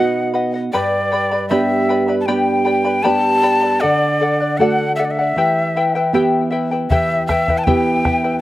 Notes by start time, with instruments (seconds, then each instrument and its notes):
Already playing: nylon-string guitar B2 B3 D#4 F#4, charango B4 D#5 F#5, quena F#5
0.34 charango B4 D#5 F#5
0.54 charango D#5 F#5
0.73 nylon-string guitar G2, charango G4 B4 D5 G5 B5, quena D5
1.12 charango B4 D5 G5 B5
1.32 charango B4 D5 B5
1.49 nylon-string guitar B3 D4 G4, charango G4 B4 D5 G5 B5, quena E5
1.89 charango B4 D5 G5 B5
2.08 charango B4 D5 B5
2.20 quena A5
2.26 nylon-string guitar B3 D4 G4, charango G4 B4 D5 G5 B5, quena G5
2.65 charango B4 D5 G5 B5
2.84 charango B4 D5 B5
3.03 nylon-string guitar B3 D4 G4, charango G4 B4 D5 G5 B5, quena A5
3.43 charango B4 D5 G5 B5
3.62 charango B4 D5 B5
3.80 nylon-string guitar D3, charango A4 D5 F#5, quena D5
4.21 charango A4 D5 F#5
4.40 charango D5 F#5
4.58 nylon-string guitar A3 D4 F#4, charango A4 D5 F#5, quena F#5
4.96 charango A4 D5 F#5, quena E5
5.05 quena D5
5.11 quena E5
5.19 charango D5 F#5
5.36 nylon-string guitar E3, charango E4 G4 B4 E5 G5
5.76 charango E4 B4 E5 G5
5.95 charango E4 B4 G5
6.13 nylon-string guitar B3 E4 G4, charango E4 G4 B4 E5 G5
6.51 charango E4 B4 E5 G5
6.71 charango E4 B4 G5
6.90 nylon-string guitar E3, charango E4 G4 B4 E5 G5, quena E5, bombo low
7.27 charango E4 B4 E5 G5, quena E5, bombo rim, bombo low
7.48 charango E4 B4 G5, bombo low
7.58 quena A5
7.64 nylon-string guitar B3 E4 G4, charango E4 G4 B4 E5 G5, quena G5, bombo low
8.05 charango E4 B4 E5 G5, bombo rim, bombo low
8.24 charango E4 B4 G5